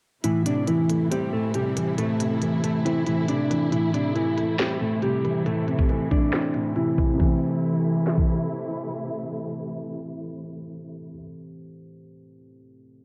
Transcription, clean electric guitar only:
0.24 E3 E4
0.46 D4 D5
0.68 E3 E4
1.11 G3 G4
1.33 A3 A4
1.55 G3 G4
1.98 A3 A4
2.64 A3 A4
2.85 E3 E4
3.07 E3 E4
3.29 D4 D5
3.72 E3 E4
3.94 D4 D5
4.15 E3 E4
4.59 G3 G4
4.81 A3 A4
5.02 G3 G4
5.46 A3 A4
6.11 D4 D5
6.76 E3 E4
7.20 E3

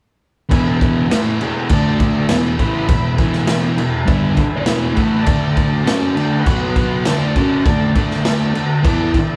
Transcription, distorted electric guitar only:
0.49 E2 B2 E3
1.09 A2 E3 A3
1.39 E2 B2 E3
1.69 D3 A3 D4
2.29 E2 B2 E3
2.58 A2 E3 A3
2.89 E2 B2
3.19 E2 B2 E3
3.77 E2 B2
4.05 G2 D3 G3
4.36 muted distorted electric guitar stroke
4.66 E2 B2 E3
4.94 A2 E3 A3
5.25 D3 A3 D4
5.84 F#3 C#4 F#4
6.15 D3 A3 D4
6.45 B2 F#3 B3
7.05 D3 A3 D4
7.36 F#3 C#4 F#4
7.67 D3 A3
7.96 D3 A3 D4
8.54 D3 A3
8.84 E3 B3 E4
9.13 muted distorted electric guitar stroke

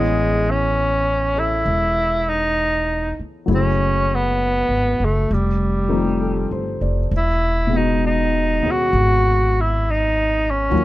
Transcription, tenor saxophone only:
Already playing: G#3
0.50 C#4
1.39 E4
2.29 D#4
3.54 C#4
4.15 B3
5.05 A3
5.32 G3
7.17 E4
7.76 D#4
8.06 D#4
8.71 F#4
9.61 E4
9.90 D#4
10.50 C#4

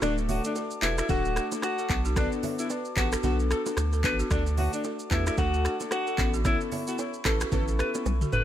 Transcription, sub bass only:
0.02 D1
0.83 E1
1.09 D1
1.90 B1
2.97 A1
3.24 B1
3.77 D2
4.04 A1
4.31 D2
5.11 E2
5.38 D2
6.18 A1
7.25 A1
7.52 A1
8.06 B1
8.32 F#1

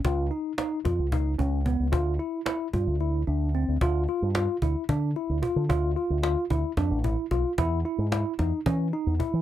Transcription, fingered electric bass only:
0.05 C#2
0.85 F2
0.99 C#2
1.39 C#2
1.80 C#2
1.92 D2
2.73 G2
2.87 D2
3.27 D2
3.68 D2
3.81 D2
4.22 G2
4.62 D2
4.89 D3
5.30 D2
5.56 D3
5.70 D2
6.10 D2
6.50 D2
6.77 F2
6.90 A1
7.31 B1
7.58 E2
7.98 G#2
8.39 E2
8.66 E3
9.06 E2
9.33 E3

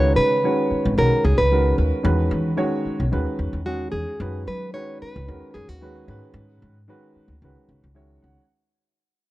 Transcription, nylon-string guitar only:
Already playing: C#5
0.16 B4
0.98 A#4
1.25 G#4
1.38 B4
3.66 F#4
3.92 G#4
4.48 B4
4.74 C#5
5.02 B4
5.54 G#4
5.69 F#4

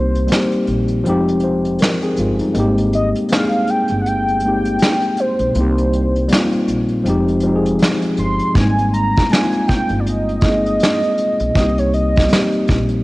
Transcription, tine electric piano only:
Already playing: G3 A#3 C4 D#4 G4
0.27 G3 A#3 C4
0.32 D#4 G4
1.04 F3 G#3 C4
1.08 D#4 G4
1.44 D#4 C5
1.81 A#4
2.03 C4 G#4
2.19 G#3 F4
2.41 G3 D#4
2.54 G#3 A#3 C4
2.59 D#4 G4
3.28 G#3 A#3 C4
3.33 D#4 G#4
4.42 G#3 A#3 C4
4.47 D#4 G4
5.55 G3 A#3 C4
5.59 D#4 G4
6.28 G3 A#3 C4
6.33 D#4 F4
7.04 F3 G#3 C4
7.08 D#4 G4
7.43 F3 G#3 C4
7.48 D#4 G4
7.56 G#4
8.54 G#3 A#3 C4
8.58 G3 D#4
9.30 G#3 A#3 C4
9.34 D#4 F4
10.43 G#3 A#3 C4
10.47 D#4 G#4
11.54 G3 A#3 C4
11.58 D#4 G4
12.27 G3 A#3 C4
12.32 D#4 G4

